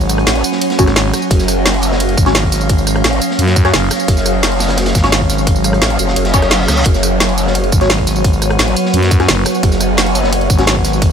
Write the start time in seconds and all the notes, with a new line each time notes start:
Already playing: G#1 F#3 C#4 F#4 C#5 F#5
0.01 tambourine
0.09 cross-stick, closed hi-hat, tambourine
0.18 cross-stick, closed hi-hat
0.27 A1, snare, closed hi-hat, ride
0.35 closed hi-hat
0.44 closed hi-hat, tambourine
0.52 snare
0.61 closed hi-hat, ride
0.70 snare, closed hi-hat
0.79 G#1 C#4 F#4 C#5, kick, closed hi-hat, tambourine
0.87 cross-stick, snare, closed hi-hat
0.96 snare, closed hi-hat, ride
1.13 cross-stick, snare, closed hi-hat, tambourine
1.22 tambourine
1.31 F#1 F5, kick, closed hi-hat, ride
1.38 F5, snare, tambourine
1.48 cross-stick, closed hi-hat, tambourine
1.66 snare, closed hi-hat, ride
1.74 closed hi-hat
1.82 closed hi-hat, tambourine
1.92 snare
2.00 closed hi-hat, ride
2.09 closed hi-hat
2.17 G#1, kick, closed hi-hat, tambourine
2.26 C#4 F#4 C#5, snare, closed hi-hat
2.35 snare, closed hi-hat, ride
2.43 kick
2.52 snare, closed hi-hat, tambourine
2.61 tambourine
2.69 kick, closed hi-hat, ride
2.78 tambourine
2.87 cross-stick, closed hi-hat, tambourine
2.96 cross-stick, closed hi-hat
3.04 A1, snare, closed hi-hat, ride
3.13 closed hi-hat
3.21 closed hi-hat, tambourine
3.31 snare
3.39 F#2, closed hi-hat, ride
3.47 snare, closed hi-hat
3.56 kick, closed hi-hat, tambourine
3.64 C#4 F#4 C#5, cross-stick, snare, closed hi-hat
3.74 F#1, snare, closed hi-hat, ride
3.90 cross-stick, snare, closed hi-hat, tambourine
4.00 tambourine
4.08 F#1, kick, closed hi-hat, ride
4.17 snare, tambourine
4.26 cross-stick, closed hi-hat, tambourine
4.43 snare, closed hi-hat, ride
4.52 closed hi-hat
4.59 snare, closed hi-hat, tambourine
4.68 snare, closed hi-hat
4.77 snare, closed hi-hat, ride
4.86 snare, closed hi-hat
4.94 G#1, kick, snare, closed hi-hat, tambourine
5.03 C#4 F#4 C#5, snare, closed hi-hat
5.12 snare, closed hi-hat, ride
5.21 kick
5.29 snare, closed hi-hat, tambourine
5.38 tambourine
5.47 kick, closed hi-hat, ride
5.56 tambourine
5.64 cross-stick, closed hi-hat, tambourine
5.73 cross-stick, closed hi-hat
5.81 A1, snare, closed hi-hat, ride
5.90 closed hi-hat
5.99 F#1, closed hi-hat, tambourine
6.08 snare
6.16 F#1, closed hi-hat, ride, reverse cymbal
6.25 snare, closed hi-hat
6.33 C#4 F#4 C#5, kick, closed hi-hat, tambourine
6.42 cross-stick, snare, closed hi-hat
6.50 snare, closed hi-hat, ride
6.68 C#2, cross-stick, snare, closed hi-hat, tambourine
6.77 tambourine
6.85 F#1 B3 F#4, kick, closed hi-hat, ride
6.93 F#5, snare, tambourine
7.03 cross-stick, closed hi-hat, tambourine
7.20 snare, closed hi-hat, ride
7.29 closed hi-hat
7.38 closed hi-hat, tambourine
7.47 snare
7.55 closed hi-hat, ride
7.64 closed hi-hat
7.72 G#1, kick, closed hi-hat, tambourine
7.81 C#4 F#4 C#5, snare, closed hi-hat
7.90 snare, closed hi-hat, ride
7.98 kick
8.06 snare, closed hi-hat, tambourine
8.16 tambourine
8.24 kick, closed hi-hat, ride
8.33 tambourine
8.42 cross-stick, closed hi-hat, tambourine
8.50 cross-stick, closed hi-hat
8.59 A1, snare, closed hi-hat, ride
8.68 closed hi-hat
8.77 closed hi-hat, tambourine
8.85 snare
8.93 F#2, closed hi-hat, ride
9.03 snare, closed hi-hat
9.11 kick, closed hi-hat, tambourine
9.20 C#4 F#4 C#5, cross-stick, snare, closed hi-hat
9.28 F#1, snare, closed hi-hat, ride
9.45 cross-stick, snare, closed hi-hat, tambourine
9.55 tambourine
9.63 F#1, kick, closed hi-hat, ride
9.72 snare, tambourine
9.80 cross-stick, closed hi-hat, tambourine
9.97 snare, closed hi-hat, ride
10.07 closed hi-hat
10.15 closed hi-hat, tambourine
10.23 snare
10.33 closed hi-hat, ride
10.41 closed hi-hat
10.50 G#1, kick, closed hi-hat, tambourine
10.59 C#4 F#4 C#5, snare, closed hi-hat
10.67 snare, closed hi-hat, ride
10.76 kick
10.84 snare, closed hi-hat, tambourine
10.93 tambourine
11.02 kick, closed hi-hat, ride